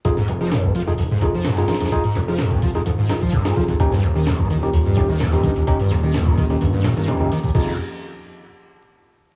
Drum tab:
CC |--------------------------------|--------------------------------|--------------------------------|--------------------------------|
HH |x---x---x---x---o---x---x---xxxx|x-x-x---x---x-x-x---x---x-x---x-|x---x---x---x---o---x---x---x-x-|x-x-x---x---x-x-o---x---x---x---|
SD |--o-----o---------------o-o-oooo|----o---o-----------o-----o-----|--o-----o---------------o-o-----|----o---o-----------o-------o---|
BD |o---------o---------o-----------|o---------o-o---------o-o---o-o-|o---------o---------o-------o---|o---------o-o-----------------o-|

CC |x-------------------------------|
HH |--------------------------------|
SD |--------------------------------|
BD |o-------------------------------|